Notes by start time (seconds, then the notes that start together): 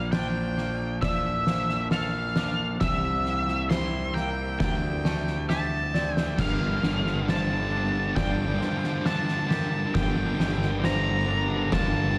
Already playing: A#1 A#2 F3 A#3 A#4 D5 F5 A5
0.12 D4 C5 G5, snare
0.57 A#3, snare
1.01 F3 D5 E5, kick, snare
1.47 A#3 C5, snare
1.69 snare
1.91 A4 F5, snare
2.36 D4, snare
2.80 C2 C3 E3 A#3 G4 C5 E5, kick, snare
3.26 A#3, snare
3.48 snare
3.70 E4 C5 C6, snare
4.14 A#3 A#4 G5, snare
4.59 D2 D3 G3 G5, kick, snare
5.05 A3, snare
5.27 snare
5.49 G4 E5 A5, snare
5.94 C4 D5, snare
6.16 G5, snare
6.37 G1 G2 D3 G3 F4 A#4 F5, kick, snare, crash
6.44 G2 D3
6.53 G2 D3
6.61 G2 D3
6.69 G2 D3
6.76 G2 D3
6.83 G1 G2 D3, snare
6.91 G2 D3
6.99 G2 D3
7.06 G2 D3, snare
7.15 G2 D3
7.23 G2 D3
7.27 G2 F3 C5 A5, snare
7.31 D3
7.38 G2 D3
7.46 G2 D3
7.53 G2 D3
7.61 G2 D3
7.69 G2 D3 D4
7.77 G2 D3
7.84 G2 D3
7.92 G2 D3
8.00 G2 D3
8.08 G2 D3
8.15 G1 G2 D3 A#3 D5 G5, kick, snare
8.23 G2 D3
8.31 G2 D3
8.39 G2 D3
8.46 G2 D3
8.54 G2 D3
8.61 G2 D3 F3 C5, snare
8.69 G2 D3
8.77 G2 D3
8.84 G2 D3, snare
8.93 G2 D3
9.00 G2 D3
9.05 G2 D3 D4 A5, snare
9.16 G2 D3
9.23 G2 D3
9.28 G2 D3, snare
9.39 G2 D3
9.46 G2 D3 G4
9.50 G2 A#4, snare
9.55 D3
9.62 G2 D3
9.70 G2 D3
9.77 G2 D3
9.85 G2 D3
9.94 G1 G2 D3 G4 G5, kick, snare
10.01 G2 D3
10.09 G2 D3
10.18 G2 D3
10.25 G2 D3
10.34 G2 D3
10.39 G1 G2 D3, snare
10.47 G2 D3
10.56 G2 D3
10.62 G2 D3, snare
10.71 G2 D3
10.80 G2 D3 F3 C5, snare
10.85 G2 D3 A#5
10.95 G2 D3
11.03 G2 D3
11.10 G2 D3
11.18 G2 D3
11.26 G2 D3 D4 A#4
11.33 G2 D3
11.41 G2 D3
11.48 G2 D3
11.57 G2 D3
11.65 G2 D3
11.72 G1 G2 D3 A#3 A5, kick, snare
11.80 G2 D3
11.87 G2 D3
11.96 G2 D3
12.03 G2 D3
12.11 G2 D3